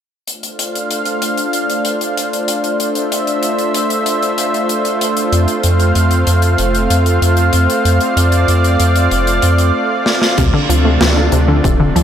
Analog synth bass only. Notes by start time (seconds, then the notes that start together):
5.32 F2
5.64 F2
5.96 F2
6.27 F2
6.59 F1
6.90 F2
7.22 F2
7.53 F2
7.85 F2
8.17 F2
8.48 F2
8.80 F2
9.11 F1
9.43 F2
10.38 D2
10.69 D2
11.01 D2
11.32 D2
11.64 D1
11.96 D2